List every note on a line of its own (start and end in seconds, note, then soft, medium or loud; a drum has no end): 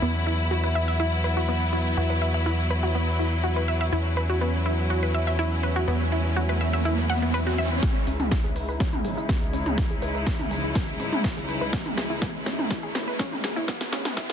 0.00 1.95 E2 medium
0.00 7.79 F#3 medium
0.00 0.14 B3 medium
0.00 3.89 B3 medium
0.00 7.79 E4 medium
0.27 0.36 E4 medium
0.51 0.61 F#4 medium
0.64 0.69 B4 medium
0.75 0.85 E5 medium
0.88 0.99 E5 medium
1.00 1.06 E4 loud
1.24 1.34 B4 medium
1.37 1.48 F#4 medium
1.49 1.61 B3 medium
1.73 1.83 E4 medium
1.97 3.90 E2 medium
1.97 2.07 F#4 medium
2.10 2.15 B4 medium
2.22 2.31 E5 medium
2.34 2.46 E5 medium
2.46 2.52 E4 medium
2.70 2.80 B4 medium
2.83 2.94 F#4 medium
2.95 3.07 B3 medium
3.19 3.29 E4 medium
3.44 3.53 F#4 medium
3.56 3.62 B4 medium
3.68 3.78 E5 medium
3.81 3.92 E5 medium
3.92 5.85 E2 medium
3.92 7.79 C#4 medium
3.92 3.98 E4 loud
3.92 riser medium
4.17 4.26 B4 medium
4.29 4.41 F#4 medium
4.41 4.53 B3 medium
4.66 4.75 E4 medium
4.90 5.00 F#4 medium
5.03 5.08 B4 medium
5.14 5.24 E5 medium
5.27 5.38 E5 medium
5.39 5.45 E4 loud
5.63 5.73 B4 medium
5.76 5.87 F#4 medium
5.88 7.80 E2 medium
5.88 6.00 B3 medium
6.12 6.22 E4 medium
6.36 6.46 F#4 medium
6.49 6.54 B4 medium
6.61 6.70 E5 medium
6.73 6.85 E5 medium
6.85 6.91 E4 loud
7.10 7.19 F#5 loud
7.22 7.33 B3 medium
7.34 7.40 B4 loud
7.47 7.55 F#4 medium
7.58 7.68 E5 medium
7.83 14.33 C#3 medium
7.83 14.33 G#3 medium
7.83 7.95 B3 medium
7.83 14.33 D#4 medium
7.83 14.33 E4 medium
7.83 kick loud
7.83 snare soft
7.83 riser medium
7.83 shaker soft
8.07 8.41 C#2 loud
8.07 8.17 C#4 medium
8.07 open hi-hat loud
8.07 shaker medium
8.20 mid tom medium
8.20 shaker soft
8.31 8.41 E4 medium
8.31 kick loud
8.31 snare soft
8.31 shaker soft
8.44 8.77 C#2 medium
8.44 8.49 G#4 medium
8.56 8.65 B4 medium
8.56 open hi-hat loud
8.56 shaker medium
8.69 8.80 B4 medium
8.69 shaker soft
8.80 8.86 C#4 medium
8.80 kick loud
8.80 snare soft
8.80 shaker soft
8.93 mid tom medium
9.05 9.15 G#1 medium
9.05 9.14 G#4 medium
9.05 open hi-hat loud
9.05 shaker medium
9.17 9.29 E4 medium
9.17 shaker soft
9.29 9.41 B3 medium
9.29 kick loud
9.29 snare medium
9.29 shaker soft
9.42 9.62 C#2 loud
9.53 9.63 C#4 medium
9.53 open hi-hat loud
9.53 shaker medium
9.66 9.99 C#2 loud
9.66 mid tom medium
9.66 shaker soft
9.78 9.87 E4 medium
9.78 kick loud
9.78 snare medium
9.78 shaker soft
9.91 9.96 G#4 medium
10.02 10.36 C#2 loud
10.02 10.12 B4 medium
10.02 open hi-hat loud
10.02 shaker medium
10.15 10.26 B4 medium
10.15 shaker soft
10.27 10.32 C#4 loud
10.27 kick loud
10.27 snare medium
10.27 shaker soft
10.39 10.73 C#2 medium
10.39 mid tom medium
10.51 10.61 G#4 medium
10.51 open hi-hat loud
10.51 shaker medium
10.64 10.75 E4 medium
10.64 shaker soft
10.75 10.87 B3 medium
10.75 kick loud
10.75 snare medium
10.75 shaker soft
11.00 11.11 G#1 medium
11.00 11.09 C#4 medium
11.00 open hi-hat loud
11.00 shaker medium
11.13 mid tom medium
11.13 shaker soft
11.24 11.34 E4 medium
11.24 kick loud
11.24 snare medium
11.24 shaker soft
11.37 11.57 C#2 loud
11.37 11.42 G#4 medium
11.49 11.58 B4 medium
11.49 open hi-hat loud
11.49 shaker medium
11.61 11.95 C#2 loud
11.61 11.72 B4 medium
11.61 shaker soft
11.73 11.79 C#4 loud
11.73 kick loud
11.73 snare medium
11.73 shaker soft
11.86 mid tom medium
11.97 12.31 C#2 loud
11.97 12.07 G#4 medium
11.97 snare medium
11.97 open hi-hat loud
11.97 shaker medium
12.10 12.21 E4 medium
12.10 shaker soft
12.22 12.34 B3 medium
12.22 kick loud
12.22 snare medium
12.22 shaker soft
12.34 12.68 C#2 medium
12.46 12.56 C#4 medium
12.46 snare medium
12.46 open hi-hat loud
12.46 shaker medium
12.59 mid tom medium
12.59 shaker soft
12.70 12.91 C#2 medium
12.70 12.80 E4 medium
12.70 kick loud
12.70 snare medium
12.70 shaker soft
12.83 12.88 G#4 medium
12.95 13.06 G#1 medium
12.95 13.04 B4 medium
12.95 snare medium
12.95 open hi-hat loud
12.95 shaker medium
13.08 13.19 B4 medium
13.08 shaker soft
13.19 13.25 C#4 loud
13.19 kick loud
13.19 snare medium
13.19 shaker soft
13.32 13.52 C#2 loud
13.32 mid tom medium
13.44 13.53 G#4 medium
13.44 snare medium
13.44 open hi-hat loud
13.44 shaker medium
13.56 13.90 C#2 loud
13.56 13.68 E4 medium
13.56 shaker soft
13.68 13.80 B3 medium
13.68 kick loud
13.68 snare loud
13.68 shaker soft
13.81 snare medium
13.92 14.26 C#2 loud
13.92 14.02 C#4 medium
13.92 snare loud
13.92 open hi-hat loud
13.92 shaker medium
14.05 snare medium
14.05 mid tom medium
14.05 shaker soft
14.17 14.26 E4 medium
14.17 kick loud
14.17 snare medium
14.17 shaker soft
14.29 14.33 C#2 medium
14.29 14.33 G#4 medium